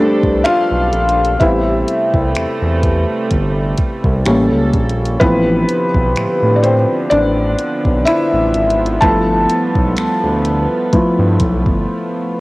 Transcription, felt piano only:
0.00 0.41 G3 soft
0.00 0.41 A3 soft
0.00 1.41 C4 medium
0.00 1.42 D4 medium
0.00 1.42 C5 medium
0.00 0.48 D5 medium
0.44 1.37 F4 medium
0.44 1.36 F5 loud
1.39 2.79 G3 medium
1.39 2.79 B3 soft
1.39 2.80 C4 medium
1.39 2.32 E4 medium
1.39 2.31 E5 medium
4.26 5.17 G3 medium
4.26 5.17 A#3 medium
4.26 5.18 C#4 medium
5.20 5.86 F3 medium
5.20 6.13 B3 medium
5.20 5.86 C4 medium
5.20 5.86 E4 medium
5.20 6.12 B4 loud
6.56 6.63 D5 medium
6.63 6.75 C4 medium
6.63 6.74 C5 medium
7.10 8.03 D4 medium
7.10 8.09 D5 medium
8.05 8.98 E4 medium
8.05 9.04 E5 medium
9.01 10.41 F3 medium
9.01 10.41 A3 soft
9.01 10.41 B3 medium
9.01 10.41 E4 medium
9.01 9.94 A4 medium
9.01 9.93 A5 loud
10.92 11.36 F3 medium
10.92 11.36 A3 soft
10.92 11.36 B3 soft
10.92 11.36 E4 medium

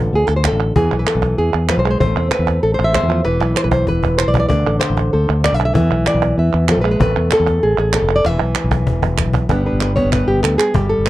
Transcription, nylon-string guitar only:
0.00 0.73 D3 medium
0.00 0.73 F4 soft
0.00 0.15 A4 medium
0.15 0.27 G#4 medium
0.27 0.36 A4 medium
0.36 0.47 C5 medium
0.47 0.76 A4 medium
0.76 1.68 E3 medium
0.76 0.99 G#4 medium
0.92 3.11 E4 soft
0.99 1.07 B4 medium
1.07 1.38 A4 medium
1.38 1.69 G#4 medium
1.69 1.84 F3 medium
1.69 1.79 B4 medium
1.79 1.89 C5 medium
1.85 2.00 G#3 medium
1.91 1.99 C5 medium
2.00 3.24 A3 medium
2.00 2.31 C5 medium
2.18 2.93 C4 soft
2.31 2.63 B4 medium
2.63 2.73 A4 medium
2.74 2.94 C5 medium
2.84 3.26 E5 medium
2.93 3.08 G#3 medium
2.93 3.25 C5 medium
3.08 3.24 F3 medium
3.24 4.50 E3 medium
3.24 3.56 B4 medium
3.41 4.49 E4 soft
3.57 3.64 C5 medium
3.64 3.71 B4 medium
3.71 3.88 C5 medium
3.88 4.18 B4 medium
4.18 4.29 C5 medium
4.28 4.38 D5 medium
4.40 4.47 D5 medium
4.49 5.73 D3 medium
4.49 4.79 D5 medium
4.67 5.12 A4 soft
4.80 5.12 C5 medium
5.13 5.74 A4 soft
5.13 5.44 C5 soft
5.44 5.54 D5 medium
5.54 5.64 E5 medium
5.65 5.74 E5 medium
5.74 6.68 E3 medium
5.74 6.07 E5 loud
6.08 6.38 D5 medium
6.39 6.71 B4 soft
6.39 8.15 E5 soft
6.68 6.84 F3 medium
6.68 6.81 A4 medium
6.81 7.00 G#3 medium
6.81 6.90 B4 medium
6.91 7.00 B4 medium
7.00 8.23 A3 medium
7.00 7.32 B4 medium
7.33 7.94 A4 medium
7.63 7.78 G#4 medium
7.79 8.26 G#4 medium
7.95 8.26 A4 medium
8.16 8.26 D5 medium
8.24 9.50 E3 medium
8.24 9.50 E5 medium
8.39 9.47 B4 soft
9.49 10.73 G3 medium
9.49 9.96 B3 soft
9.49 9.66 D4 soft
9.49 9.66 B4 soft
9.66 10.73 D4 soft
9.66 9.81 B4 soft
9.82 9.95 B4 soft
9.96 10.73 B3 medium
9.96 10.12 C#5 medium
10.13 10.28 B4 medium
10.28 10.43 G4 medium
10.43 10.58 A4 medium
10.58 10.74 G#4 medium
10.74 11.10 G3 medium
10.74 10.89 G4 medium
10.89 11.06 A4 medium
11.06 11.10 B4 medium

